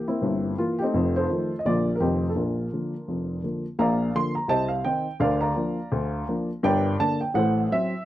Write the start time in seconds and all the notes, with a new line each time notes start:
0.08 A#3 C4 E4
0.21 G1 G2
0.58 E3 A#3 F4
0.79 D#4 G4
0.84 A3 C4
0.94 F1 F2
1.16 F4 A4 C5
1.31 D#3 F3 A3
1.59 D#5
1.65 A#1 A#2 D3 F3 A#3 F4 A#4 D5
1.96 A#4
2.00 F1 F2 D#3 F3 A3 C4 D#4 G4
2.29 A4
2.35 A#1 A#2 D4 F4 A#4
2.73 D3 F3 A#3
3.08 F1 F2
3.43 D3 F3 A#3
3.79 A#1 A#2 D5 F5 A#5
4.15 D3 F3 A#3 C6
4.35 A#5
4.48 C2 C3 C5 D#5 A5
4.68 F5
4.85 D#3 C4 D#4 G5
5.20 D2 D3 A#4 D5 F5
5.41 D5 F5 A#5
5.56 F3 A#3 D4
5.92 D2 D3
6.29 F3 A#3 D4
6.63 G1 G2 A#4 D5 G5
7.00 D3 A#3 D4 A5
7.21 G5
7.34 A1 A2 A4 C5 F#5
7.72 F#3 C4 E5